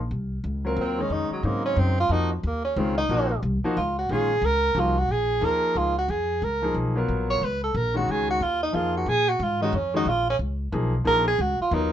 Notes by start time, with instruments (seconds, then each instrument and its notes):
0.11 upright bass C2
0.44 upright bass C#2
0.65 grand piano F#3 C4 F4 A#4
0.77 upright bass D#2
0.81 tenor saxophone C4
0.98 grand piano D#3 G#3 C#4 D#4, tenor saxophone C#4
1.10 upright bass F2, tenor saxophone D#4
1.30 tenor saxophone F#3, muted upright bass stroke
1.43 upright bass G#2, grand piano C#3 F#3 C4 D#4, tenor saxophone A#3
1.66 tenor saxophone C#4
1.76 upright bass F#2, tenor saxophone C4
2.00 tenor saxophone F4
2.09 upright bass F2, grand piano F3 A#3 D#4 F#4, tenor saxophone D#4
2.33 tenor saxophone F#3
2.43 upright bass D#2, tenor saxophone A#3
2.65 tenor saxophone C#4
2.76 upright bass C#2, grand piano D#3 G#3 C#4 F4, tenor saxophone C4
2.98 tenor saxophone D#4
3.09 upright bass A#1, grand piano F3 A#3 D#4 F#4
3.43 upright bass C2
3.64 grand piano F3 A#3 D#4 F#4, muted upright bass stroke
3.77 upright bass C#2, tenor saxophone F4
3.99 tenor saxophone F#4
4.09 upright bass A#1, grand piano D#3 G#3 C#4 F4, tenor saxophone G#4
4.42 upright bass C#2, tenor saxophone A#4
4.74 upright bass C2, grand piano F3 A#3 D#4 F#4
4.79 tenor saxophone F4
4.99 tenor saxophone F#4
5.09 upright bass A#1, tenor saxophone G#4
5.41 upright bass D#2, grand piano F3 A#3 D#4 G#4, tenor saxophone A#4
5.75 upright bass C#2, tenor saxophone F4
5.98 tenor saxophone F#4
6.08 upright bass F2, tenor saxophone G#4
6.42 upright bass C#2, tenor saxophone A#4
6.62 grand piano F3 A#3 D#4 G#4
6.74 upright bass B1
6.96 grand piano F#3 B3 F4 A#4
7.08 upright bass A#1
7.30 tenor saxophone C#5
7.41 upright bass C#2, tenor saxophone B4
7.64 tenor saxophone A4
7.75 upright bass A#1, tenor saxophone A#4
7.94 grand piano D#3 G#3 C#4 F#4, tenor saxophone F#4
8.08 upright bass C#2, tenor saxophone G#4
8.31 tenor saxophone F#4
8.40 upright bass D#2, tenor saxophone F4
8.63 tenor saxophone D#4
8.73 upright bass F2, grand piano F3 A#3 D#4 G#4, tenor saxophone F4
8.97 tenor saxophone F#4
9.06 upright bass A#2, tenor saxophone G#4
9.29 tenor saxophone F#4
9.39 upright bass G#2, tenor saxophone F4
9.61 grand piano D#3 G#3 C#4 F#4, tenor saxophone D#4
9.73 upright bass F2, tenor saxophone C#4
9.94 grand piano D#3 G#3 C#4 F#4, tenor saxophone D#4
10.05 upright bass A#1, tenor saxophone F4
10.30 tenor saxophone C#4
10.39 upright bass C#2
10.72 upright bass B1, grand piano F3 A#3 D#4 G#4
11.04 upright bass A#1, grand piano F3 A#3 D#4 G#4, tenor saxophone A#4
11.28 tenor saxophone G#4
11.38 upright bass C#2, tenor saxophone F#4
11.60 tenor saxophone F4, muted upright bass stroke
11.71 upright bass D#2, grand piano F#3 B3 F4 A#4, tenor saxophone D#4